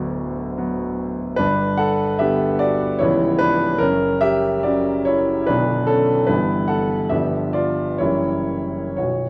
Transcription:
0.00 1.35 D1 medium
0.00 1.35 D2 medium
0.00 0.54 F#3 soft
0.00 0.55 B3 soft
0.00 0.94 F#4 medium
0.00 0.97 D5 medium
0.58 1.35 F#3 soft
0.58 1.35 B3 soft
1.36 2.98 G1 soft
1.36 2.98 G2 medium
1.36 1.77 D4 medium
1.36 1.79 B4 medium
1.77 2.18 A4 medium
1.77 2.20 F#5 medium
2.19 2.98 D3 soft
2.19 2.98 G3 soft
2.19 2.98 B3 soft
2.19 2.58 G4 medium
2.19 2.61 E5 medium
2.59 2.98 F#4 medium
2.59 3.00 D5 medium
2.99 3.79 C#1 medium
2.99 3.79 C#2 medium
2.99 3.78 E3 soft
2.99 3.78 G3 soft
2.99 3.78 B3 soft
2.99 3.38 E4 medium
2.99 3.40 C#5 medium
3.38 3.78 D4 medium
3.38 3.80 B4 medium
3.78 5.45 F#1 soft
3.78 5.45 F#2 medium
3.78 4.19 C#4 medium
3.78 4.21 A#4 medium
4.21 4.62 G4 medium
4.21 4.64 E5 loud
4.63 5.45 C#3 soft
4.63 5.46 F#3 soft
4.63 5.46 C#4 soft
4.63 5.04 F#4 medium
4.63 5.07 D5 medium
5.05 5.46 E4 medium
5.05 5.48 C#5 medium
5.47 6.28 B0 soft
5.47 6.28 B1 medium
5.47 6.26 D3 soft
5.47 6.26 F#3 soft
5.47 6.27 B3 soft
5.47 5.86 D4 medium
5.47 5.89 B4 medium
5.87 6.26 C#4 medium
5.87 6.29 A4 medium
6.27 7.09 G1 soft
6.27 7.09 G2 soft
6.27 7.07 E3 soft
6.27 7.08 G3 soft
6.27 7.08 B3 soft
6.27 6.67 E4 medium
6.27 6.69 B4 medium
6.68 7.08 A4 medium
6.68 7.11 F#5 medium
7.09 7.99 G1 soft
7.09 7.99 G2 soft
7.09 7.97 F3 soft
7.09 7.98 G3 soft
7.09 7.98 B3 soft
7.09 7.52 G4 soft
7.09 7.54 E5 medium
7.53 7.98 F4 medium
7.53 8.00 D5 medium
7.98 8.97 F#1 soft
7.98 8.96 F#2 soft
7.98 8.95 E3 soft
7.98 8.96 G3 soft
7.98 8.96 A#3 soft
7.98 8.95 E4 medium
7.98 8.95 C#5 medium
8.97 9.29 B0 soft
8.97 9.29 B1 soft
8.97 9.29 F#4 soft
8.97 9.29 C#5 medium

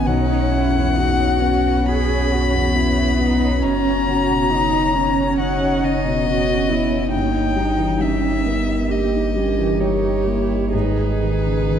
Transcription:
0.00 0.10 C#3 soft
0.00 0.10 D#3 soft
0.00 0.10 D#5 soft
0.06 3.65 B1 medium
0.06 1.83 B1 medium
0.06 3.58 B3 medium
0.06 0.97 C#4 medium
0.06 0.53 D#4 medium
0.06 3.58 F#4 medium
0.06 3.62 C#5 medium
0.06 1.88 F#5 loud
0.31 0.65 C#5 medium
0.51 0.87 F#2 soft
0.51 0.97 E4 medium
0.75 0.97 E2 soft
0.95 1.33 F#2 soft
0.95 1.42 D#4 medium
0.95 1.90 F#4 medium
1.20 1.56 C#5 soft
1.40 1.78 B3 medium
1.40 2.77 C#4 medium
1.64 2.00 C#5 medium
1.86 2.22 F#2 soft
1.86 2.34 G#4 medium
1.86 3.64 B5 loud
2.08 2.44 C#5 medium
2.31 2.66 F#2 soft
2.31 2.77 F#4 medium
2.53 2.75 E2 soft
2.75 3.10 F#2 soft
2.75 3.61 B3 medium
2.75 3.23 E4 medium
2.96 3.32 C#5 soft
3.19 3.54 B3 medium
3.19 3.63 D#4 medium
3.41 3.63 C#5 soft
3.62 7.14 F#1 medium
3.62 5.34 F#2 medium
3.62 4.51 C#4 medium
3.62 4.09 C#4 medium
3.62 7.13 C#4 medium
3.62 7.09 F#4 medium
3.62 7.09 C#5 medium
3.62 5.37 A#5 loud
3.85 4.20 C#5 medium
4.07 4.42 C#3 soft
4.07 4.52 F#4 medium
4.29 4.51 B2 soft
4.50 4.85 C#3 medium
4.50 4.96 D#4 medium
4.50 4.97 D#4 medium
4.73 5.07 C#5 soft
4.94 5.29 C#4 medium
4.94 6.26 C#4 medium
4.94 5.40 C#4 medium
5.17 5.51 C#5 soft
5.38 5.73 C#3 soft
5.38 6.27 D#4 medium
5.38 5.85 F#5 medium
5.60 5.95 C#5 soft
5.82 6.17 C#3 soft
5.82 7.11 D#5 loud
6.05 6.26 B2 soft
6.26 6.61 C#3 soft
6.26 6.70 C#4 medium
6.26 6.70 F#4 medium
6.50 6.83 C#5 soft
6.69 7.11 B3 medium
6.69 7.05 C#4 soft
6.69 7.12 E4 medium
6.91 7.12 C#5 soft
7.12 10.74 G1 medium
7.12 8.86 G2 medium
7.12 7.58 A#3 medium
7.12 8.92 D#4 medium
7.12 10.74 G4 medium
7.12 10.74 A#4 medium
7.12 8.02 G5 medium
7.12 10.74 G5 medium
7.35 7.69 D#5 soft
7.56 7.91 G3 soft
7.56 8.01 D#4 medium
7.77 8.00 E3 soft
7.99 8.35 G3 soft
7.99 8.47 C#4 medium
7.99 8.93 E5 medium
8.22 8.58 G5 soft
8.45 8.92 B3 medium
8.45 8.81 A#4 soft
8.69 9.04 D#5 soft
8.90 10.70 G2 soft
8.90 9.37 A#3 medium
8.90 9.35 G4 medium
8.90 9.82 D#5 medium
9.12 9.48 D#4 soft
9.36 9.72 G3 soft
9.36 9.81 C#4 medium
9.36 10.71 G4 medium
9.58 9.81 E3 soft
9.80 10.17 G3 soft
9.80 10.28 D#4 soft
9.80 10.74 C#5 medium
10.05 10.41 D#5 soft
10.26 10.64 A#3 soft
10.26 10.73 E4 medium
10.51 10.74 D#5 soft
10.72 11.79 G#1 medium
10.72 11.79 G#2 medium
10.72 11.79 B3 medium
10.72 11.79 D#4 medium
10.72 11.79 F#4 soft
10.72 11.79 G#4 soft
10.72 11.79 B4 medium
10.72 11.79 D#5 medium
10.97 11.35 D#5 soft
11.22 11.59 D#3 soft
11.46 11.69 C#3 soft
11.70 11.79 D#3 soft

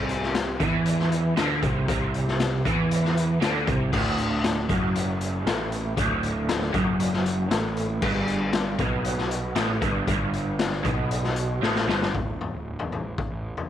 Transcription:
0.00 0.56 C2 medium
0.00 0.59 C3 loud
0.09 closed hi-hat medium
0.23 snare soft
0.35 snare loud
0.35 closed hi-hat medium
0.60 1.33 E2 loud
0.60 1.36 E3 medium
0.60 kick loud
0.60 closed hi-hat medium
0.86 closed hi-hat medium
0.99 snare soft
1.12 closed hi-hat medium
1.36 1.60 D2 medium
1.36 1.61 D3 loud
1.36 snare loud
1.36 closed hi-hat loud
1.63 1.86 C2 medium
1.63 1.87 C3 medium
1.63 kick loud
1.63 closed hi-hat medium
1.88 2.61 C2 medium
1.88 2.64 C3 loud
1.88 kick loud
1.88 closed hi-hat loud
2.14 closed hi-hat medium
2.27 snare soft
2.40 snare loud
2.40 closed hi-hat loud
2.65 3.38 E2 loud
2.65 3.40 E3 medium
2.65 kick loud
2.65 closed hi-hat medium
2.91 closed hi-hat medium
3.04 snare soft
3.17 closed hi-hat medium
3.41 3.65 D2 medium
3.41 3.66 D3 loud
3.41 snare loud
3.41 closed hi-hat loud
3.67 3.91 C2 medium
3.67 3.92 C3 loud
3.67 kick loud
3.67 closed hi-hat medium
3.93 4.65 D1 medium
3.93 4.69 D2 loud
3.93 kick loud
3.93 crash loud
4.18 closed hi-hat medium
4.44 snare loud
4.44 closed hi-hat loud
4.69 5.42 F#1 medium
4.69 5.46 F#2 loud
4.69 kick loud
4.69 closed hi-hat medium
4.95 closed hi-hat medium
5.21 closed hi-hat medium
5.46 5.94 A1 loud
5.46 5.97 A2 loud
5.46 snare loud
5.46 closed hi-hat loud
5.72 closed hi-hat medium
5.97 6.70 D1 medium
5.97 6.73 D2 loud
5.97 kick loud
5.97 closed hi-hat loud
6.23 closed hi-hat medium
6.49 snare loud
6.49 closed hi-hat loud
6.61 snare soft
6.74 7.47 F#1 loud
6.74 7.51 F#2 loud
6.74 kick loud
6.74 closed hi-hat medium
7.00 closed hi-hat loud
7.13 snare soft
7.26 closed hi-hat medium
7.51 7.99 A1 loud
7.51 8.02 A2 loud
7.51 snare loud
7.51 closed hi-hat loud
7.77 closed hi-hat medium
8.02 8.75 G1 medium
8.02 8.79 G2 loud
8.02 kick loud
8.02 crash loud
8.27 closed hi-hat medium
8.53 snare loud
8.53 closed hi-hat loud
8.78 9.52 B1 loud
8.78 9.55 B2 loud
8.78 kick loud
8.78 closed hi-hat medium
9.05 closed hi-hat loud
9.18 snare soft
9.31 closed hi-hat medium
9.56 9.80 A1 loud
9.56 9.81 A2 loud
9.56 snare loud
9.56 closed hi-hat medium
9.82 10.06 G1 medium
9.82 10.07 G2 loud
9.82 kick loud
9.82 closed hi-hat medium
10.08 10.81 G1 medium
10.08 10.84 G2 loud
10.08 kick loud
10.08 closed hi-hat medium
10.33 closed hi-hat medium
10.59 snare loud
10.59 closed hi-hat loud
10.72 snare soft
10.85 11.58 B1 loud
10.85 11.61 B2 loud
10.85 kick loud
10.85 closed hi-hat medium
11.11 closed hi-hat loud
11.23 snare soft
11.36 closed hi-hat medium
11.62 11.86 A1 loud
11.62 11.87 A2 loud
11.62 snare medium
11.75 snare medium
11.87 12.11 G1 medium
11.87 12.13 G2 loud
11.87 snare medium
12.02 snare medium
12.15 12.36 D1 medium
12.15 kick loud
12.15 floor tom medium
12.41 floor tom medium
12.52 12.85 D1 medium
12.79 floor tom medium
12.91 13.13 A1 medium
12.91 floor tom medium
13.18 kick medium
13.18 floor tom medium
13.31 13.52 A1 medium
13.57 floor tom medium

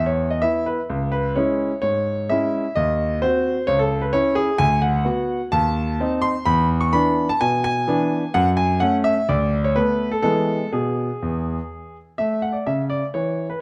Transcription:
0.00 0.41 E2 medium
0.06 0.28 C#5 medium
0.30 0.43 D#5 medium
0.42 0.76 B3 soft
0.42 0.77 E4 soft
0.42 0.66 E5 medium
0.66 0.80 B4 medium
0.90 1.35 C#2 medium
1.12 1.36 B4 medium
1.36 1.70 G#3 soft
1.36 1.70 C#4 soft
1.36 1.71 E4 soft
1.36 1.80 C#5 medium
1.82 2.32 G#2 soft
1.82 2.29 C#5 medium
2.29 2.63 G#3 soft
2.29 2.64 C#4 soft
2.29 2.64 E4 soft
2.29 2.76 E5 medium
2.75 3.21 D#2 medium
2.75 3.18 D#5 medium
3.22 3.55 C4 soft
3.22 3.56 F#4 soft
3.22 3.68 C5 medium
3.67 4.12 C#2 medium
3.67 3.79 C#5 medium
3.79 4.02 A4 medium
4.01 4.13 B4 medium
4.13 4.47 C#4 medium
4.13 4.47 E4 medium
4.13 4.34 C#5 medium
4.35 4.57 G#4 medium
4.58 5.04 D2 medium
4.58 4.80 G#5 loud
4.82 5.52 F#5 medium
5.05 5.39 B3 soft
5.05 5.40 F#4 medium
5.52 5.98 D#2 medium
5.52 6.23 A5 loud
6.00 6.34 C4 medium
6.00 6.34 D#4 medium
6.22 6.46 C6 loud
6.46 6.92 E2 medium
6.46 6.67 B5 loud
6.81 6.93 C#6 medium
6.93 7.27 E3 medium
6.93 7.27 B3 medium
6.93 7.28 D4 medium
6.93 7.28 B5 loud
7.29 7.41 A5 medium
7.41 7.90 B2 medium
7.41 7.62 G#5 loud
7.64 8.35 G#5 loud
7.88 8.21 E3 medium
7.88 8.22 B3 medium
7.88 8.22 D4 medium
8.34 8.80 F#2 medium
8.34 8.48 F#5 loud
8.57 8.78 G#5 medium
8.80 9.15 A3 medium
8.80 9.16 C#4 medium
8.80 8.95 F#5 loud
9.04 9.28 E5 medium
9.29 9.75 D2 medium
9.29 9.65 D5 medium
9.64 9.76 C#5 medium
9.76 10.11 A3 soft
9.76 10.11 B3 medium
9.76 10.09 B4 medium
10.12 10.21 A4 medium
10.22 10.58 E3 medium
10.22 10.64 G#3 soft
10.22 10.63 B3 soft
10.22 10.69 A4 medium
10.73 11.08 B2 medium
10.73 11.96 G#4 medium
11.22 11.57 E2 medium
12.18 12.53 A3 soft
12.18 12.40 E5 medium
12.42 12.55 F#5 medium
12.53 12.66 D5 soft
12.67 13.01 C#3 soft
12.67 12.81 E5 medium
12.90 13.04 D5 medium
13.14 13.48 E3 soft
13.14 13.46 C#5 medium
13.50 13.61 B4 medium

